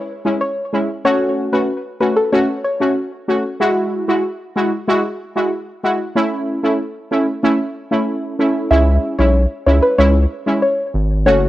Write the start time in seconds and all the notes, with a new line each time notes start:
Already playing: C#5
0.25 G#3 C#4 E4
0.41 C#5
0.73 G#3 C#4 E4
1.04 A3 C#4 F#4 C#5
1.52 A3 C#4 F#4 B4
2.00 A3 C#4 F#4 B4
2.16 A4
2.32 A3 C#4 F#4 C#5
2.64 C#5
2.80 A3 C#4 F#4
3.28 A3 C#4 F#4
3.60 G#3 E4 F#4
4.08 G#3 E4 F#4
4.56 G#3 E4 F#4
4.88 G#3 E4 F#4
5.36 G#3 E4 F#4
5.83 G#3 E4 F#4
6.15 A3 C#4 E4
6.63 A3 C#4 E4
7.11 A3 C#4 E4
7.43 A3 C#4 E4
7.91 A3 C#4 E4
8.39 A3 C#4 E4
8.71 C#2 G#3 C#4 E4 E5
9.19 B1 G#3 C#4 E4 C#5
9.66 C#2 G#3 C#4 E4 C#5
9.83 B4
9.98 C#2 G#3 C#4 E4 C#5
10.46 G#3 C#4 E4
10.62 C#5
10.94 G#1
11.26 F#1 A3 C#4 F#4 C#5